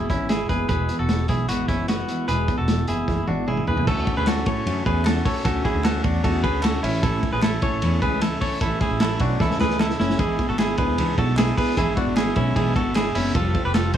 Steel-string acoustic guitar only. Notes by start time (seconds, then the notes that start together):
Already playing: G#3
0.09 E3 G#3 B3 E4
0.29 E3 G#3 B3 E4
0.48 E3 G#3 B3 E4
0.68 E2 B2 E3 G#3 B3 E4
0.89 E3 G#3 B3 E4
1.08 E3 G#3 B3 E4
1.27 E3 G#3 B3 E4
1.47 E2 B2 E3 G#3 B3 E4
1.67 E3 G#3 B3 E4
1.87 E3 G#3 B3 E4
2.08 E3 G#3 B3 E4
2.27 E2 B2 E3 G#3 B3 E4
2.47 E3 G#3 B3 E4
2.67 E3 G#3 B3 E4
2.88 E3 G#3 B3 E4
3.08 E2 B2 E3 G#3 B3 E4
3.28 E3 G#3 B3 E4
3.47 E3 G#3 B3 E4
3.67 E3 G#3 B3 E4
3.87 D3 A3 C#4 F#4
4.07 A3 C#4 F#4
4.26 D3 A3 C#4 F#4
4.46 A3 C#4 F#4
4.66 D3 A3 C#4 F#4
4.85 A3 C#4 F#4
5.05 D3 A3 C#4 F#4
5.25 A3 C#4 F#4
5.45 D3 A3 C#4 F#4
5.64 A3 C#4 F#4
5.84 D3 A3 C#4 F#4
6.04 A3 C#4 F#4
6.23 D3 A3 C#4 F#4
6.44 A3 C#4 F#4
6.63 D3 A3 C#4 F#4
6.83 A3 C#4 E4
7.03 A2 E3 A3 C#4 E4
7.22 A3 E4
7.42 E3 A3 C#4 E4
7.62 A3 C#4 E4
7.81 A2 E3 A3 C#4 E4
8.02 A3 C#4 E4
8.22 E3 A3 C#4 E4
8.41 A3 C#4 E4
8.61 A2 E3 A3 C#4 E4
8.80 A3 C#4 E4
9.00 E3 A3 C#4 E4
9.19 A3 C#4 E4
9.39 A2 E3 A3 C#4 E4
9.59 A3 C#4 E4
9.78 E3 A3 C#4 E4
9.98 A3 C#4 E4
10.18 G#2 E3 G#3 B3 D4 E4
10.37 G#3 B3 D4 E4
10.57 G#3 B3 D4 E4
10.77 G#3 B3 D4 E4
10.97 G#2 E3 G#3 B3 D4 E4
11.16 G#3 B3 D4 E4
11.36 G#3 B3 D4 E4
11.56 G#3 B3 D4 E4
11.76 G#2 E3 G#3 B3 D4 E4
11.95 G#3 B3 D4 E4
12.16 G#3 B3 D4 E4
12.35 G#3 B3 D4 E4
12.55 G#2 E3 G#3 B3 D4 E4
12.74 G#3 B3 D4 E4
12.94 G#3 B3 D4 E4
13.14 G#3 B3 D4 E4
13.34 F3 G3 C4 F4 A4
13.54 C4 F4 A4
13.73 G3 C4 F4 A4
13.93 A4